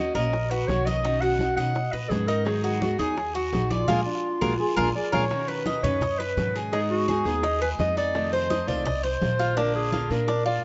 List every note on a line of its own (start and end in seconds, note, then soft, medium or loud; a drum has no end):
0.00 0.14 D#3 soft
0.00 0.15 A#3 soft
0.00 0.14 C#4 medium
0.00 0.13 F#4 medium
0.00 0.14 F#4 medium
0.00 0.15 D#5 loud
0.15 0.65 A#1 medium
0.15 0.31 A#3 medium
0.15 0.32 C#4 medium
0.15 0.32 F#4 medium
0.15 0.50 A#4 medium
0.15 0.52 D#5 loud
0.15 high conga soft
0.15 short guiro medium
0.32 muted steel-string acoustic guitar stroke medium
0.32 high bongo medium
0.32 high conga soft
0.32 long guiro medium
0.51 0.85 F#4 medium
0.51 0.69 B4 medium
0.51 high bongo soft
0.51 high conga soft
0.68 1.52 B1 medium
0.68 1.03 D#3 soft
0.68 1.04 A#3 medium
0.68 1.03 C#4 medium
0.68 1.04 F#4 medium
0.68 0.87 C#5 medium
0.68 high bongo soft
0.68 low bongo medium
0.68 high conga medium
0.68 short guiro medium
0.86 1.23 D#5 loud
0.86 1.04 D#5 medium
0.86 high bongo soft
0.86 high conga medium
0.86 short guiro medium
1.03 1.38 B2 medium
1.03 1.38 D#3 medium
1.03 1.39 C#4 medium
1.03 1.22 D#4 medium
1.03 1.40 F#4 medium
1.03 high bongo medium
1.03 high conga soft
1.03 long guiro medium
1.21 1.56 F#4 medium
1.21 1.56 F#5 loud
1.21 high bongo soft
1.21 high conga soft
1.39 1.56 B2 medium
1.39 1.57 D#3 soft
1.39 1.56 C#4 medium
1.39 1.55 F#4 medium
1.39 high bongo medium
1.39 high conga medium
1.39 short guiro medium
1.57 1.90 B2 medium
1.57 1.74 D#3 medium
1.57 1.74 C#4 medium
1.57 1.74 F#4 medium
1.57 1.92 D#5 medium
1.57 1.94 F#5 loud
1.57 high conga soft
1.57 short guiro medium
1.75 muted steel-string acoustic guitar stroke medium
1.75 high bongo medium
1.75 high conga soft
1.75 long guiro medium
1.92 2.28 B4 medium
1.92 2.11 D#5 medium
1.92 high bongo soft
1.92 high conga soft
2.10 2.93 G#2 medium
2.10 2.44 B2 soft
2.10 2.44 D#3 medium
2.10 2.46 C#4 medium
2.10 2.46 F#4 medium
2.10 2.29 G#4 medium
2.10 high bongo soft
2.10 low bongo medium
2.10 high conga medium
2.10 short guiro medium
2.28 2.63 D#4 medium
2.28 2.45 A#4 medium
2.28 high bongo soft
2.28 high conga soft
2.28 short guiro medium
2.45 2.80 D#3 medium
2.45 2.79 F#3 medium
2.45 2.80 B3 medium
2.45 2.81 D#4 medium
2.45 2.63 G#4 medium
2.45 2.82 G#4 medium
2.45 high bongo medium
2.45 high conga soft
2.45 long guiro medium
2.64 2.98 F#4 medium
2.64 2.83 G#4 medium
2.64 high bongo soft
2.64 high conga soft
2.81 2.98 F#3 medium
2.81 2.99 B3 medium
2.81 2.98 D#4 medium
2.81 3.01 F#4 medium
2.81 2.97 G#4 medium
2.81 high bongo medium
2.81 high conga medium
2.81 short guiro medium
2.98 3.49 D#2 medium
2.98 3.16 F#3 medium
2.98 3.16 B3 medium
2.98 3.16 D#4 medium
2.98 3.16 G#4 medium
2.98 3.34 G#4 medium
2.98 3.36 G#4 medium
2.98 high conga soft
2.98 short guiro medium
3.17 muted steel-string acoustic guitar stroke medium
3.17 high bongo medium
3.17 high conga soft
3.17 long guiro medium
3.35 3.70 F#4 medium
3.35 high bongo soft
3.35 high conga soft
3.52 3.86 A#1 medium
3.52 3.87 F#3 soft
3.52 3.88 B3 medium
3.52 3.88 D#4 soft
3.52 3.88 G#4 medium
3.52 high bongo soft
3.52 low bongo medium
3.52 high conga medium
3.52 short guiro medium
3.70 4.91 F4 medium
3.70 3.88 D5 medium
3.70 high bongo soft
3.70 high conga medium
3.70 short guiro medium
3.88 4.01 A#1 medium
3.88 4.00 G#3 loud
3.88 4.00 A#3 medium
3.88 4.00 D4 medium
3.88 4.00 F4 loud
3.88 4.00 G#4 medium
3.88 4.00 A#4 medium
3.88 low bongo medium
3.88 high conga loud
3.88 long guiro medium
4.06 4.39 D4 medium
4.41 4.55 A#1 medium
4.41 4.53 G#3 medium
4.41 4.53 A#3 medium
4.41 4.53 D4 medium
4.41 4.53 F4 medium
4.41 4.59 F#4 medium
4.41 4.53 G#4 medium
4.41 4.53 A#4 medium
4.41 low bongo medium
4.41 high conga medium
4.41 long guiro medium
4.60 4.76 G#4 loud
4.76 4.90 A#1 medium
4.76 4.89 G#3 medium
4.76 4.89 A#3 medium
4.76 4.89 D4 medium
4.76 4.88 F4 medium
4.76 4.88 G#4 medium
4.76 4.88 A#4 medium
4.76 4.94 A#4 medium
4.76 low bongo medium
4.76 high conga loud
4.95 5.28 G#4 medium
4.95 5.15 D5 medium
5.12 5.26 A#1 medium
5.12 5.24 G#3 medium
5.12 5.24 A#3 medium
5.12 5.24 D4 medium
5.12 5.24 F4 medium
5.12 5.24 G#4 medium
5.12 5.24 A#4 medium
5.12 5.50 C#5 loud
5.12 low bongo loud
5.12 high conga medium
5.29 5.64 B2 medium
5.29 5.64 D#3 medium
5.29 5.65 C#4 medium
5.29 5.66 F#4 medium
5.29 high bongo medium
5.29 high conga soft
5.29 long guiro medium
5.48 5.65 B4 medium
5.48 5.83 B4 medium
5.48 high bongo soft
5.48 high conga soft
5.65 5.82 B2 soft
5.65 5.83 D#3 medium
5.65 5.83 C#4 medium
5.65 5.82 F#4 medium
5.65 5.83 D#5 medium
5.65 high bongo medium
5.65 high conga loud
5.65 short guiro medium
5.83 6.33 F#2 medium
5.83 6.00 D#3 medium
5.83 6.01 C#4 medium
5.83 6.00 F#4 medium
5.83 6.01 B4 medium
5.83 6.20 C#5 medium
5.83 high conga soft
5.83 low conga medium
5.83 short guiro medium
6.01 6.19 D#5 medium
6.01 muted steel-string acoustic guitar stroke medium
6.01 high bongo medium
6.01 high conga soft
6.01 low conga medium
6.01 long guiro medium
6.19 6.57 B4 loud
6.19 6.54 B4 medium
6.19 high bongo soft
6.19 high conga soft
6.37 7.20 G#2 medium
6.37 6.71 B2 medium
6.37 6.71 D#3 medium
6.37 6.72 C#4 medium
6.37 6.73 F#4 medium
6.37 high bongo soft
6.37 low bongo medium
6.37 high conga medium
6.37 short guiro medium
6.56 6.72 G#4 medium
6.56 high bongo soft
6.56 short guiro medium
6.72 7.07 D#3 medium
6.72 7.06 G#3 medium
6.72 7.07 B3 medium
6.72 7.07 D#4 medium
6.72 7.08 D#4 medium
6.72 6.81 G#4 medium
6.72 7.08 G#4 medium
6.72 high bongo medium
6.72 high conga soft
6.72 long guiro medium
6.91 7.28 F#4 medium
6.91 high bongo soft
6.91 high conga soft
7.08 7.25 G#3 soft
7.08 7.25 B3 medium
7.08 7.25 D#4 medium
7.08 7.43 G#4 medium
7.08 7.24 G#4 medium
7.08 high bongo medium
7.08 high conga medium
7.08 short guiro medium
7.25 7.75 D#2 medium
7.25 7.42 G#3 medium
7.25 7.43 B3 medium
7.25 7.43 D#4 medium
7.25 7.43 G#4 medium
7.25 7.61 G#4 medium
7.25 high conga soft
7.25 short guiro medium
7.43 7.61 D#4 medium
7.43 muted steel-string acoustic guitar stroke medium
7.43 high bongo medium
7.43 high conga soft
7.43 long guiro medium
7.62 7.96 G#4 medium
7.62 7.70 B4 medium
7.62 high bongo soft
7.62 high conga soft
7.78 8.62 F2 medium
7.78 8.14 G#3 soft
7.78 8.14 B3 medium
7.78 8.14 D#4 medium
7.78 8.15 G#4 medium
7.78 7.96 D#5 loud
7.78 high bongo soft
7.78 low bongo medium
7.78 high conga medium
7.78 short guiro medium
7.97 8.32 D#4 medium
7.97 8.30 D5 loud
7.97 high bongo soft
7.97 high conga soft
7.97 short guiro medium
8.13 8.49 C3 medium
8.13 8.49 D#3 medium
8.13 8.50 A3 medium
8.13 8.50 C4 medium
8.13 8.50 F4 medium
8.13 high bongo medium
8.13 high conga soft
8.13 long guiro medium
8.33 8.70 C5 loud
8.33 8.50 C5 medium
8.33 high bongo soft
8.33 high conga soft
8.50 8.67 D#3 soft
8.50 8.68 A3 medium
8.50 8.67 C4 medium
8.50 8.66 F4 medium
8.50 8.68 D#5 medium
8.50 high bongo medium
8.50 high conga medium
8.50 short guiro medium
8.67 9.17 C2 medium
8.67 8.84 D#3 medium
8.67 8.84 A3 medium
8.67 8.84 C4 medium
8.67 8.85 F4 medium
8.67 8.85 C5 medium
8.67 9.05 D5 loud
8.67 high conga soft
8.67 low conga medium
8.67 short guiro medium
8.85 9.03 D#5 medium
8.85 muted steel-string acoustic guitar stroke medium
8.85 high bongo medium
8.85 high conga soft
8.85 low conga medium
8.85 long guiro medium
9.03 9.38 C5 medium
9.03 9.59 C5 loud
9.03 high bongo soft
9.03 high conga soft
9.21 10.05 A#1 medium
9.21 9.56 D#3 soft
9.21 9.56 A3 medium
9.21 9.57 C4 medium
9.21 9.57 F4 medium
9.21 high bongo soft
9.21 low bongo medium
9.21 high conga medium
9.21 short guiro medium
9.39 9.56 F4 medium
9.39 high bongo soft
9.39 short guiro medium
9.57 9.91 D3 medium
9.57 9.92 A#3 medium
9.57 9.91 D4 medium
9.57 9.92 D4 medium
9.57 9.93 F4 medium
9.57 9.75 A#4 medium
9.57 high bongo medium
9.57 high conga soft
9.57 long guiro medium
9.75 10.13 G#4 medium
9.75 high bongo soft
9.75 high conga soft
9.92 10.10 D3 soft
9.92 10.10 A#3 medium
9.92 10.10 D4 medium
9.92 10.27 F4 medium
9.92 10.09 F4 medium
9.92 high bongo medium
9.92 high conga medium
9.92 short guiro medium
10.10 10.60 A#2 medium
10.10 10.27 A#3 medium
10.10 10.27 D4 medium
10.10 10.27 F4 medium
10.10 10.46 A#4 medium
10.10 high conga soft
10.10 short guiro medium
10.28 10.45 D4 medium
10.28 muted steel-string acoustic guitar stroke medium
10.28 high bongo medium
10.28 high conga soft
10.28 long guiro medium
10.46 10.64 F4 medium
10.46 10.63 D5 medium
10.46 high bongo soft
10.46 high conga soft